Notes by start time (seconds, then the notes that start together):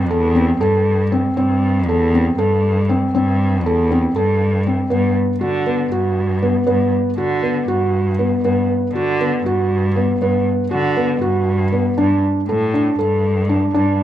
Already playing: G2
0.10 E2 A4
0.35 C4
0.60 G2 A4
1.12 C4
1.35 G2 C4
1.87 E2 A4
2.14 C4
2.37 G2 A4
2.89 C4
3.13 G2 C4
3.63 E2 A4
3.91 C4
4.15 G2 A4
4.67 C4
4.90 G2 B3
5.41 D3 F#4
5.66 B3
5.91 G2 F#4
6.42 B3
6.67 G2 B3
7.18 D3 F#4
7.43 B3
7.68 G2 F#4
8.19 B3
8.44 G2 B3
8.94 D3 F#4
9.20 B3
9.44 G2 F#4
9.96 B3
10.21 G2 B3
10.71 D3 F#4
10.97 B3
11.21 G2 F#4
11.72 B3
11.98 G2 D4
12.48 A2 A4
12.74 D4
12.99 G2 A4
13.49 D4
13.74 G2 D4